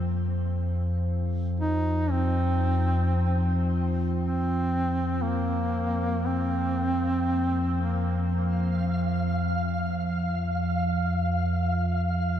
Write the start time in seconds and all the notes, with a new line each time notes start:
Already playing: F2 F3
1.60 D#4
2.11 C4
4.20 C4
5.22 A#3
6.26 C4
7.81 A#3
8.34 F5